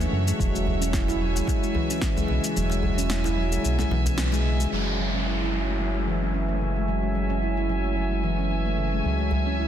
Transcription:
0.00 0.40 D3 medium
0.00 0.11 A3 loud
0.00 5.68 F#4 medium
0.00 1.79 C#5 medium
0.00 9.68 E5 medium
0.00 djembe slap soft
0.00 shaker soft
0.12 0.32 F#2 medium
0.12 0.26 C#3 medium
0.28 0.39 G#3 medium
0.28 shaker medium
0.39 1.42 E1 loud
0.39 4.72 E3 medium
0.39 0.53 F#3 loud
0.39 kick loud
0.39 shaker soft
0.55 0.62 G#3 medium
0.55 djembe tone soft
0.55 shaker soft
0.66 0.80 F#3 medium
0.66 djembe bass medium
0.81 0.92 C#4 loud
0.81 shaker medium
0.93 1.07 E4 medium
0.93 kick loud
0.93 snare medium
0.93 shaker medium
1.08 1.20 E4 loud
1.08 djembe tone medium
1.08 shaker soft
1.20 1.34 F#3 loud
1.20 9.68 G#5 medium
1.35 1.47 G#3 medium
1.35 djembe tone medium
1.35 shaker medium
1.47 1.61 F#3 medium
1.47 kick medium
1.47 djembe slap medium
1.47 shaker medium
1.63 1.70 G#3 medium
1.63 shaker soft
1.75 1.88 E3 medium
1.75 djembe bass medium
1.90 2.01 C#4 medium
1.90 shaker medium
2.02 kick loud
2.02 snare medium
2.02 shaker medium
2.17 2.28 G#3 medium
2.17 djembe bass medium
2.17 shaker soft
2.28 2.40 B1 medium
2.28 2.42 C#3 medium
2.28 djembe slap soft
2.44 2.55 G#3 medium
2.44 shaker medium
2.56 3.59 E1 loud
2.56 2.69 F#3 loud
2.56 shaker soft
2.69 2.78 G#3 medium
2.69 djembe slap medium
2.69 djembe tone soft
2.69 shaker soft
2.83 2.96 F#3 medium
2.83 djembe bass medium
2.98 3.09 C#4 loud
2.98 shaker medium
3.10 3.23 E4 medium
3.10 snare loud
3.10 shaker soft
3.24 3.36 E4 loud
3.24 djembe slap medium
3.24 djembe tone medium
3.24 shaker soft
3.36 3.50 F#3 loud
3.51 3.62 G#3 medium
3.51 djembe tone medium
3.51 shaker medium
3.63 3.84 B1 medium
3.63 3.77 F#3 medium
3.63 shaker medium
3.78 3.86 G#3 medium
3.78 snare soft
3.78 djembe bass medium
3.78 shaker soft
3.91 4.66 B1 loud
3.91 4.04 E3 loud
3.91 djembe slap medium
4.05 4.16 C#4 medium
4.05 djembe bass medium
4.05 shaker medium
4.17 4.31 C#4 medium
4.17 snare loud
4.17 shaker medium
4.32 4.44 G#3 loud
4.32 djembe slap medium
4.32 shaker soft
4.45 4.58 C#3 medium
4.59 4.71 G#3 medium
4.59 shaker medium
4.72 9.02 F#1 medium
4.72 4.85 F#3 medium
4.72 9.05 F#3 medium
4.72 downlifter medium
4.86 4.94 G#3 medium
4.93 9.68 C#4 medium
4.99 5.12 F#3 medium
5.14 5.25 C#4 medium
5.26 5.39 E4 medium
5.41 5.52 E4 medium
5.53 5.66 F#3 medium
5.67 5.79 A3 medium
5.80 5.93 F#3 medium
5.95 6.02 G#3 medium
6.07 6.20 E3 medium
6.22 6.33 C#4 medium
6.34 6.47 C#4 medium
6.49 6.60 A3 medium
6.61 6.75 C#3 medium
6.76 6.88 G#3 medium
6.88 7.01 F#3 medium
7.03 7.10 G#3 medium
7.15 7.28 F#3 medium
7.30 7.41 C#4 medium
7.42 7.56 E4 medium
7.57 7.68 E4 medium
7.69 7.83 F#3 medium
7.84 7.95 A3 medium
7.97 8.10 F#3 medium
8.11 8.18 G#3 medium
8.24 8.37 E3 medium
8.39 8.50 C#4 medium
8.51 8.64 C#4 medium
8.66 8.77 A3 medium
8.78 8.91 C#3 medium
8.93 9.04 G#3 medium
9.05 9.68 C#2 medium
9.05 9.68 C#3 medium
9.05 9.18 F#3 medium
9.19 9.27 G#3 medium
9.19 djembe tone soft
9.31 9.45 F#3 medium
9.31 djembe bass medium
9.47 9.58 C#4 medium
9.59 9.68 E4 medium
9.59 9.68 B4 medium

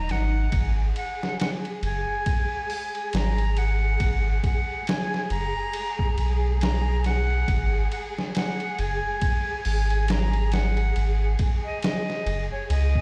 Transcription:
0.00 0.11 D#1 medium
0.00 0.55 D#4 medium
0.00 0.12 A#5 loud
0.09 0.48 G#1 loud
0.09 0.72 F#5 loud
0.09 snare soft
0.09 ride medium
0.52 0.92 G#1 loud
0.52 13.02 G#4 medium
0.52 kick loud
0.52 ride medium
0.96 1.37 F#5 medium
0.96 ride medium
1.23 snare medium
1.40 1.50 F#5 loud
1.40 snare loud
1.40 ride medium
1.65 ride soft
1.83 2.05 F#1 loud
1.83 3.10 G#5 loud
1.83 ride medium
2.26 kick loud
2.26 ride medium
2.70 open hi-hat medium
2.95 ride soft
3.13 3.97 G#1 medium
3.13 3.59 A#5 loud
3.13 snare loud
3.13 ride medium
3.38 ride soft
3.57 4.44 F#5 loud
3.57 ride medium
4.00 4.39 G#1 loud
4.00 kick loud
4.00 ride medium
4.44 4.90 F#5 medium
4.44 kick loud
4.44 ride medium
4.87 5.31 G#5 loud
4.87 snare loud
4.87 ride medium
5.14 snare soft
5.30 5.53 F#1 medium
5.30 6.33 A#5 loud
5.30 ride medium
5.73 ride medium
5.99 kick medium
6.18 7.45 B1 medium
6.18 ride medium
6.61 7.02 A#5 loud
6.61 snare loud
6.61 ride medium
7.04 7.88 F#5 loud
7.04 snare soft
7.04 ride medium
7.48 7.87 G#1 loud
7.48 kick loud
7.48 ride medium
7.92 8.02 F#5 medium
7.92 ride medium
8.18 snare medium
8.35 8.81 F#5 loud
8.35 snare loud
8.35 ride medium
8.60 ride soft
8.79 9.01 F#1 loud
8.79 10.12 G#5 loud
8.79 ride medium
9.21 kick loud
9.21 ride loud
9.65 10.93 G#1 medium
9.65 open hi-hat medium
9.90 ride soft
10.08 10.54 A#5 loud
10.08 snare loud
10.08 ride medium
10.33 ride soft
10.52 11.35 F#5 loud
10.52 snare loud
10.52 ride medium
10.77 ride soft
10.96 11.35 G#1 loud
10.96 ride medium
11.39 kick loud
11.39 ride medium
11.65 11.82 D#5 medium
11.83 12.48 D#5 medium
11.83 snare loud
11.83 ride medium
12.10 snare soft
12.26 12.48 F#1 loud
12.26 ride medium
12.52 12.69 C#5 medium
12.70 13.02 C#2 loud
12.70 13.02 D#5 loud
12.70 ride loud
12.95 kick medium

